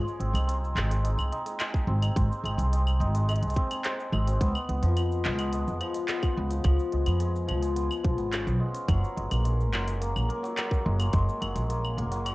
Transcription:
Already playing: hammered dulcimer G#3 C#4 G#4
0.08 cabasa
0.20 upright bass G#1, hammered dulcimer C4, closed hi-hat
0.34 upright bass C2, hammered dulcimer D#4, closed hi-hat, cabasa, claves
0.47 hammered dulcimer C4, closed hi-hat, cabasa
0.64 cabasa
0.75 upright bass G#1, hammered dulcimer G#3, clap, closed hi-hat, claves
0.90 hammered dulcimer C4, closed hi-hat, cabasa
1.04 hammered dulcimer D#4, closed hi-hat, cabasa
1.18 upright bass C2, cabasa, claves
1.32 hammered dulcimer D#4, closed hi-hat
1.46 hammered dulcimer G#3, closed hi-hat, cabasa
1.59 hammered dulcimer G#3, clap, closed hi-hat, cabasa, claves
1.74 kick, cabasa
1.87 upright bass G#1, hammered dulcimer C4
2.02 hammered dulcimer D#4, closed hi-hat, cabasa, claves
2.16 upright bass G#1, hammered dulcimer C4, kick, closed hi-hat, cabasa
2.32 cabasa
2.44 upright bass G#1, hammered dulcimer G#3, closed hi-hat, claves
2.58 upright bass C2, hammered dulcimer C4, closed hi-hat, cabasa
2.72 hammered dulcimer D#4, closed hi-hat, cabasa
2.87 cabasa, claves
3.00 upright bass G#1, hammered dulcimer D#4, closed hi-hat
3.14 hammered dulcimer G#3, closed hi-hat, cabasa
3.28 hammered dulcimer G#3, closed hi-hat, cabasa, claves
3.36 closed hi-hat
3.42 upright bass C2, closed hi-hat, cabasa
3.47 closed hi-hat, cabasa
3.51 cabasa
3.54 hammered dulcimer C4, kick, closed hi-hat, cabasa
3.71 hammered dulcimer D#4, closed hi-hat, cabasa, claves
3.84 hammered dulcimer C4, clap, closed hi-hat, cabasa
4.00 cabasa
4.12 upright bass G#1, hammered dulcimer G#3, claves
4.27 hammered dulcimer C4, closed hi-hat, cabasa
4.41 upright bass C#2, hammered dulcimer B3, kick, closed hi-hat, cabasa
4.55 cabasa, claves
4.69 upright bass C#2, hammered dulcimer B3, closed hi-hat
4.82 upright bass F2, hammered dulcimer F3, closed hi-hat, cabasa
4.97 hammered dulcimer F3, closed hi-hat, cabasa, claves
5.12 cabasa
5.25 upright bass C#2, hammered dulcimer G#3, clap, closed hi-hat
5.39 hammered dulcimer B3, closed hi-hat, cabasa, claves
5.53 hammered dulcimer G#3, closed hi-hat, cabasa
5.68 upright bass F2, cabasa
5.81 hammered dulcimer F3, closed hi-hat, claves
5.94 hammered dulcimer G#3, closed hi-hat, cabasa
6.08 hammered dulcimer B3, clap, closed hi-hat, cabasa
6.23 kick, cabasa, claves
6.36 upright bass C#2, hammered dulcimer B3
6.50 hammered dulcimer F3, closed hi-hat, cabasa
6.64 upright bass C#2, hammered dulcimer F3, kick, closed hi-hat, cabasa, claves
6.80 cabasa
6.92 upright bass C#2, hammered dulcimer G#3, closed hi-hat
7.06 upright bass F2, hammered dulcimer B3, closed hi-hat, cabasa, claves
7.20 hammered dulcimer G#3, closed hi-hat, cabasa
7.36 cabasa
7.48 upright bass C#2, hammered dulcimer F3, closed hi-hat, claves
7.61 hammered dulcimer G#3, closed hi-hat, cabasa
7.75 hammered dulcimer B3, closed hi-hat, cabasa
7.91 cabasa, claves
8.04 upright bass B1, hammered dulcimer F3, kick, closed hi-hat
8.18 upright bass G#1, hammered dulcimer B3, closed hi-hat, cabasa
8.31 hammered dulcimer C#4, clap, closed hi-hat, cabasa, claves
8.47 upright bass B1, cabasa
8.60 hammered dulcimer G#3
8.74 hammered dulcimer C#4, closed hi-hat, cabasa
8.88 upright bass F#1, hammered dulcimer F#3, kick, closed hi-hat, cabasa, claves
9.04 cabasa
9.16 upright bass F#1, hammered dulcimer G#3, closed hi-hat
9.30 upright bass A#1, hammered dulcimer A#3, closed hi-hat, cabasa, claves
9.44 hammered dulcimer G#3, closed hi-hat, cabasa
9.61 cabasa
9.73 upright bass F#1, hammered dulcimer F#3, clap, closed hi-hat, claves
9.87 hammered dulcimer G#3, closed hi-hat, cabasa
10.01 hammered dulcimer A#3, closed hi-hat, cabasa
10.16 upright bass A#1, cabasa, claves
10.29 hammered dulcimer A#3, closed hi-hat
10.43 hammered dulcimer F#3, closed hi-hat, cabasa
10.57 hammered dulcimer F#3, clap, closed hi-hat, cabasa, claves
10.71 kick, cabasa
10.85 upright bass F#1, hammered dulcimer G#3
10.99 hammered dulcimer A#3, closed hi-hat, cabasa, claves
11.13 upright bass F#1, hammered dulcimer G#3, kick, closed hi-hat, cabasa
11.29 cabasa
11.40 upright bass F#1, hammered dulcimer F#3, closed hi-hat, claves
11.55 upright bass A#1, hammered dulcimer G#3, closed hi-hat, cabasa
11.69 hammered dulcimer A#3, closed hi-hat, cabasa
11.85 cabasa, claves
11.97 upright bass F#1, hammered dulcimer A#3, closed hi-hat
12.11 hammered dulcimer F#3, closed hi-hat, cabasa
12.25 hammered dulcimer F#3, closed hi-hat, cabasa, claves

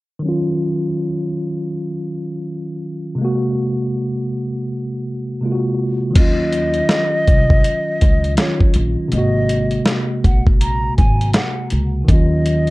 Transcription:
0.19 tine electric piano D#3 F#3
0.26 tine electric piano C#4 F4
3.15 tine electric piano C3 G#3
3.21 tine electric piano A#3 F#4
5.41 tine electric piano C3 G#3 A#3
5.45 tine electric piano F4
5.52 tine electric piano F#4
6.11 tine electric piano D#3 F#3
6.15 upright bass D#2, tine electric piano C#4, flute D#5, kick, closed hi-hat, crash
6.20 tine electric piano F4
6.53 closed hi-hat
6.74 closed hi-hat
6.89 snare, closed hi-hat
7.27 upright bass C2, kick, closed hi-hat
7.50 kick
7.64 closed hi-hat
8.01 upright bass C#2, kick, closed hi-hat
8.24 closed hi-hat
8.36 tine electric piano D#3 F#3 C#4, flute C#5, snare, closed hi-hat
8.41 tine electric piano F4
8.61 kick
8.74 upright bass A#1, closed hi-hat
9.08 tine electric piano C3 G#3, closed hi-hat
9.12 upright bass G#1, tine electric piano A#3, flute D#5
9.18 tine electric piano F#4
9.49 closed hi-hat
9.71 closed hi-hat
9.86 snare, closed hi-hat
10.24 upright bass A#1, flute F#5, kick, closed hi-hat
10.47 kick
10.61 flute A#5, closed hi-hat
10.97 upright bass G#1, flute G#5, kick, closed hi-hat
11.21 closed hi-hat
11.34 flute F#5, snare, closed hi-hat
11.70 upright bass C#2, closed hi-hat
12.04 tine electric piano D#3 F#3
12.08 upright bass D#2, tine electric piano C#4, flute D#5, kick, closed hi-hat
12.13 tine electric piano F4
12.46 closed hi-hat
12.67 closed hi-hat

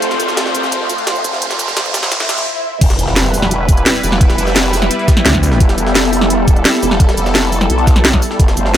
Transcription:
Already playing: analog synth pad A3 F4 C5, ambient pad C4 A4 F5 C6, riser
0.02 wobble bass F1, closed hi-hat
0.11 snare, closed hi-hat
0.20 wobble bass C2, closed hi-hat, shaker
0.28 snare, shaker
0.37 snare, closed hi-hat
0.46 snare
0.55 wobble bass C2, closed hi-hat, shaker
0.63 snare, shaker
0.72 closed hi-hat
0.90 wobble bass F2, closed hi-hat, shaker
0.98 closed hi-hat
1.07 snare, closed hi-hat
1.16 shaker
1.24 wobble bass F1, closed hi-hat, shaker
1.33 snare
1.42 closed hi-hat
1.51 snare, closed hi-hat
1.59 closed hi-hat, shaker
1.68 snare, shaker
1.77 wobble bass A1, snare, closed hi-hat
1.85 closed hi-hat
1.94 snare, closed hi-hat, shaker
2.03 snare, closed hi-hat, shaker
2.12 snare, closed hi-hat, swell
2.20 snare, closed hi-hat
2.29 snare, closed hi-hat, shaker
2.38 snare, closed hi-hat
2.81 wobble bass E1, analog synth pad G3 E4 B4, ambient pad B3, kick, closed hi-hat, crash, impact
2.90 snare, closed hi-hat
2.95 wobble bass F1, ambient pad G4, closed hi-hat, shaker
3.08 snare
3.16 snare, closed hi-hat
3.25 snare
3.34 closed hi-hat, open hi-hat, shaker
3.42 ambient pad B5, snare
3.51 ambient pad E5, closed hi-hat
3.60 wobble bass E1
3.69 kick, closed hi-hat, shaker
3.77 closed hi-hat
3.86 snare, closed hi-hat
3.95 shaker
4.03 wobble bass E1, closed hi-hat, open hi-hat, shaker
4.12 snare
4.21 kick, closed hi-hat
4.30 snare, closed hi-hat
4.38 wobble bass F1, closed hi-hat, shaker
4.47 snare, shaker
4.56 snare, closed hi-hat
4.73 closed hi-hat, open hi-hat, shaker
4.82 snare, closed hi-hat, shaker
4.91 closed hi-hat
4.99 closed hi-hat
5.08 kick, snare, closed hi-hat, shaker
5.17 snare, closed hi-hat
5.26 fm bass D2, snare, closed hi-hat
5.34 kick, snare, shaker
5.43 closed hi-hat, open hi-hat, shaker
5.52 snare
5.60 wobble bass E1, analog synth pad A4, ambient pad A5, kick, closed hi-hat
5.69 snare, closed hi-hat
5.78 wobble bass F1, closed hi-hat, shaker
5.87 snare
5.95 snare, closed hi-hat
6.04 snare
6.13 closed hi-hat, open hi-hat, shaker
6.21 snare
6.30 closed hi-hat
6.48 kick, closed hi-hat, shaker
6.56 closed hi-hat
6.65 snare, closed hi-hat
6.74 shaker
6.83 wobble bass E1, closed hi-hat, open hi-hat, shaker
6.91 snare
7.00 kick, closed hi-hat
7.09 snare, closed hi-hat
7.17 wobble bass F1, closed hi-hat, shaker
7.26 snare, shaker
7.35 snare, closed hi-hat
7.52 closed hi-hat, open hi-hat, shaker
7.61 snare, closed hi-hat, shaker
7.70 wobble bass B1, closed hi-hat
7.79 closed hi-hat
7.87 kick, snare, closed hi-hat, shaker
7.96 snare, closed hi-hat
8.05 snare, closed hi-hat
8.13 kick, snare, shaker
8.22 closed hi-hat, open hi-hat, shaker
8.31 snare
8.39 wobble bass F1, analog synth pad A3 F4 C5, ambient pad C4, kick, closed hi-hat
8.48 snare, closed hi-hat
8.57 wobble bass G1, closed hi-hat, shaker
8.63 ambient pad A4, snare

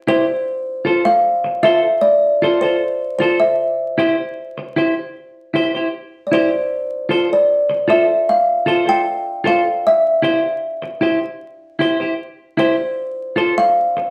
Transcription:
0.08 clean electric guitar E4 G4 C5, kalimba C5
0.85 clean electric guitar F4 A4 C5
1.05 kalimba F5
1.44 muted clean electric guitar stroke
1.63 clean electric guitar F4 A4 C5, kalimba E5
2.01 kalimba D5
2.42 clean electric guitar F4 A4 C5
2.61 clean electric guitar F4 A4 C5, kalimba C5
3.19 clean electric guitar F4 A4 C5, kalimba C5
3.40 kalimba E5
3.98 clean electric guitar E4 G4 C5
4.58 muted clean electric guitar stroke
4.76 clean electric guitar E4 G4 C5
5.54 clean electric guitar E4 G4 C5
5.75 clean electric guitar E4 G4 C5
6.27 kalimba D5
6.32 clean electric guitar E4 G4 C5, kalimba C5
7.09 clean electric guitar F4 A4 C5
7.33 kalimba D5
7.70 muted clean electric guitar stroke
7.88 clean electric guitar F4 A4 C5, kalimba E5
8.29 kalimba F5
8.66 clean electric guitar F4 A4 C5
8.86 clean electric guitar F4 A4 C5, kalimba G5
9.44 clean electric guitar F4 A4 C5, kalimba F5
9.87 kalimba E5
10.22 clean electric guitar E4 G4 C5
10.82 muted clean electric guitar stroke
11.01 clean electric guitar E4 G4 C5
11.79 clean electric guitar E4 G4 C5
12.00 clean electric guitar E4 G4 C5
12.57 clean electric guitar E4 G4 C5, kalimba C5
13.36 clean electric guitar F4 A4 C5
13.58 kalimba F5
13.97 muted clean electric guitar stroke

